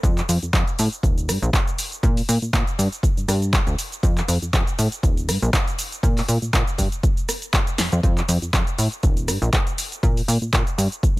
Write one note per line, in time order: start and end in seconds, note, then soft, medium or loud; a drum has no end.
0.03 0.22 F2 loud
0.03 kick loud
0.03 closed hi-hat medium
0.03 shaker soft
0.17 clap soft
0.17 closed hi-hat soft
0.17 shaker soft
0.29 0.38 F2 medium
0.29 open hi-hat loud
0.29 shaker medium
0.42 0.51 F2 soft
0.42 closed hi-hat soft
0.42 shaker soft
0.53 0.63 F2 medium
0.53 kick loud
0.53 clap loud
0.53 closed hi-hat medium
0.53 shaker soft
0.68 closed hi-hat soft
0.68 shaker soft
0.79 0.88 A2 medium
0.79 open hi-hat loud
0.79 shaker medium
0.92 closed hi-hat soft
0.92 shaker soft
1.03 1.30 D#1 medium
1.03 kick loud
1.03 closed hi-hat medium
1.03 shaker soft
1.18 closed hi-hat soft
1.18 shaker soft
1.29 1.38 G2 medium
1.29 cross-stick medium
1.29 open hi-hat loud
1.29 shaker medium
1.42 1.50 A#1 loud
1.42 closed hi-hat soft
1.42 shaker soft
1.53 kick loud
1.53 clap loud
1.53 closed hi-hat medium
1.53 shaker soft
1.68 closed hi-hat soft
1.68 shaker soft
1.78 open hi-hat loud
1.78 shaker medium
1.92 closed hi-hat soft
1.92 shaker soft
2.03 2.22 A#2 loud
2.03 kick loud
2.03 closed hi-hat medium
2.03 shaker soft
2.17 open hi-hat medium
2.17 shaker soft
2.29 2.38 A#2 medium
2.29 open hi-hat loud
2.29 shaker medium
2.42 2.51 A#2 soft
2.42 closed hi-hat soft
2.42 shaker soft
2.53 2.63 A#2 medium
2.53 kick loud
2.53 clap loud
2.53 closed hi-hat medium
2.53 shaker soft
2.67 closed hi-hat soft
2.67 shaker soft
2.79 2.88 G2 medium
2.79 open hi-hat loud
2.79 shaker medium
2.92 closed hi-hat soft
2.92 shaker soft
3.03 kick loud
3.03 closed hi-hat medium
3.03 shaker soft
3.17 3.26 G2 soft
3.17 closed hi-hat soft
3.17 shaker soft
3.28 3.61 G2 medium
3.28 cross-stick medium
3.28 open hi-hat loud
3.28 shaker medium
3.42 closed hi-hat soft
3.42 shaker soft
3.53 kick loud
3.53 clap loud
3.53 closed hi-hat medium
3.53 shaker soft
3.67 3.75 D2 medium
3.67 closed hi-hat soft
3.67 shaker soft
3.79 open hi-hat loud
3.79 shaker medium
3.92 closed hi-hat soft
3.92 shaker soft
4.03 4.22 F2 loud
4.03 kick loud
4.03 closed hi-hat medium
4.03 shaker soft
4.17 clap soft
4.17 closed hi-hat soft
4.17 shaker soft
4.28 4.38 F2 medium
4.28 open hi-hat loud
4.28 shaker medium
4.42 4.51 F2 soft
4.42 closed hi-hat soft
4.42 shaker soft
4.53 4.63 F2 medium
4.53 kick loud
4.53 clap loud
4.53 closed hi-hat medium
4.53 shaker soft
4.67 closed hi-hat soft
4.67 shaker soft
4.79 4.88 A2 medium
4.79 open hi-hat loud
4.79 shaker medium
4.92 closed hi-hat soft
4.92 shaker soft
5.03 5.30 D#1 medium
5.03 kick loud
5.03 closed hi-hat medium
5.03 shaker soft
5.17 closed hi-hat soft
5.17 shaker soft
5.28 5.38 G2 loud
5.28 cross-stick medium
5.28 open hi-hat loud
5.28 shaker medium
5.42 5.50 A#1 loud
5.42 closed hi-hat soft
5.42 shaker soft
5.53 kick loud
5.53 clap loud
5.53 closed hi-hat medium
5.53 shaker soft
5.68 closed hi-hat soft
5.68 shaker soft
5.79 open hi-hat loud
5.79 shaker medium
5.92 closed hi-hat soft
5.92 shaker soft
6.03 6.22 A#2 loud
6.03 kick loud
6.03 closed hi-hat medium
6.03 shaker soft
6.17 clap soft
6.17 open hi-hat medium
6.17 shaker soft
6.28 6.38 A#2 medium
6.28 open hi-hat loud
6.28 shaker medium
6.42 6.51 A#2 soft
6.42 closed hi-hat soft
6.42 shaker soft
6.53 6.63 A#2 medium
6.53 kick loud
6.53 clap loud
6.53 closed hi-hat medium
6.53 shaker soft
6.67 closed hi-hat soft
6.67 shaker soft
6.78 6.88 G2 medium
6.78 kick medium
6.78 open hi-hat loud
6.78 shaker medium
6.92 closed hi-hat soft
6.92 shaker soft
7.03 kick loud
7.03 closed hi-hat medium
7.03 shaker soft
7.17 closed hi-hat soft
7.17 shaker soft
7.29 cross-stick medium
7.29 open hi-hat loud
7.29 shaker medium
7.42 closed hi-hat soft
7.42 shaker soft
7.53 kick loud
7.53 clap loud
7.53 closed hi-hat medium
7.53 shaker soft
7.67 closed hi-hat soft
7.67 shaker soft
7.78 7.89 F2 soft
7.78 snare medium
7.78 open hi-hat loud
7.78 shaker medium
7.92 8.00 F2 medium
7.92 closed hi-hat soft
7.92 shaker soft
8.03 8.22 F2 loud
8.03 kick loud
8.03 closed hi-hat medium
8.03 shaker soft
8.17 clap soft
8.17 closed hi-hat soft
8.17 shaker soft
8.28 8.38 F2 medium
8.28 open hi-hat loud
8.28 shaker medium
8.42 8.51 F2 soft
8.42 closed hi-hat soft
8.42 shaker soft
8.53 8.63 F2 medium
8.53 kick loud
8.53 clap loud
8.53 closed hi-hat medium
8.53 shaker soft
8.67 closed hi-hat soft
8.67 shaker soft
8.78 8.88 A2 medium
8.78 open hi-hat loud
8.78 shaker medium
8.92 closed hi-hat soft
8.92 shaker soft
9.03 9.30 D#1 medium
9.03 kick loud
9.03 closed hi-hat medium
9.03 shaker soft
9.17 closed hi-hat soft
9.17 shaker soft
9.28 9.38 G2 medium
9.28 cross-stick medium
9.28 open hi-hat loud
9.28 shaker medium
9.42 9.50 A#1 loud
9.42 closed hi-hat soft
9.42 shaker soft
9.53 kick loud
9.53 clap loud
9.53 closed hi-hat medium
9.53 shaker soft
9.67 closed hi-hat soft
9.67 shaker soft
9.78 open hi-hat loud
9.78 shaker medium
9.92 closed hi-hat soft
9.92 shaker soft
10.03 10.22 A#2 loud
10.03 kick loud
10.03 closed hi-hat medium
10.03 shaker soft
10.17 open hi-hat medium
10.17 shaker soft
10.28 10.38 A#2 medium
10.28 open hi-hat loud
10.28 shaker medium
10.42 10.51 A#2 soft
10.42 closed hi-hat soft
10.42 shaker soft
10.53 10.63 A#2 medium
10.53 kick loud
10.53 clap loud
10.53 closed hi-hat medium
10.53 shaker soft
10.67 closed hi-hat soft
10.67 shaker soft
10.78 10.88 G2 medium
10.78 open hi-hat loud
10.78 shaker medium
10.92 closed hi-hat soft
10.92 shaker soft
11.03 kick loud
11.03 closed hi-hat medium
11.03 shaker soft
11.16 11.20 G2 soft